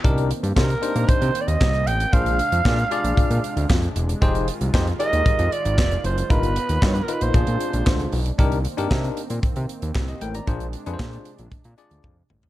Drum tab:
HH |xxxx-xxxxxxx-xxx|xxxx-xxxxxxx-xxx|xxxx-xxxxxxx-xxx|xxxx-xxxxxxx-xox|
CP |----x-------x---|----x-------x---|----x-------x---|----x-------x---|
SD |----o-------o---|----o-------o---|----o-------o---|----o-------o---|
T1 |----------------|----------------|----------------|----------------|
T2 |----------------|----------------|----------------|----------------|
FT |----------------|----------------|----------------|----------------|
BD |o---o---o---o---|o---o---o---o---|o---o---o---o---|o---o---o---o---|

HH |xxxx-xxxxxxx-xxx|xxxx-xxxxxxx----|
CP |----x-------x---|----x-----------|
SD |----o-------o---|----o-----------|
T1 |----------------|------------o---|
T2 |----------------|--------------o-|
FT |----------------|---------------o|
BD |o---o---o---o---|o---o---o---o---|